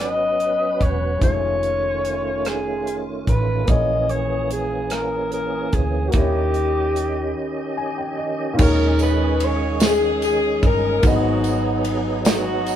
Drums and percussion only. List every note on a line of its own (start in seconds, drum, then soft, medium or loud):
0.40 closed hi-hat soft
0.81 kick medium
0.81 closed hi-hat soft
1.21 kick medium
1.21 closed hi-hat medium
1.63 closed hi-hat soft
2.05 closed hi-hat medium
2.45 cross-stick medium
2.45 closed hi-hat medium
2.87 closed hi-hat soft
3.27 kick medium
3.27 closed hi-hat soft
3.68 kick medium
3.68 closed hi-hat medium
4.09 closed hi-hat soft
4.51 closed hi-hat medium
4.90 cross-stick medium
4.90 closed hi-hat medium
5.32 closed hi-hat soft
5.73 kick medium
5.73 closed hi-hat soft
6.12 kick medium
6.12 closed hi-hat medium
6.54 closed hi-hat soft
6.96 closed hi-hat medium
8.59 kick loud
8.59 crash medium
8.59 tambourine soft
8.99 ride soft
8.99 tambourine medium
9.40 ride medium
9.80 snare loud
9.80 ride medium
9.80 tambourine medium
10.22 ride soft
10.22 tambourine medium
10.63 kick medium
10.63 ride medium
11.03 kick loud
11.03 ride medium
11.03 tambourine soft
11.44 ride soft
11.44 tambourine medium
11.84 ride medium
12.25 snare loud
12.25 ride medium
12.25 tambourine medium
12.66 ride soft
12.66 tambourine medium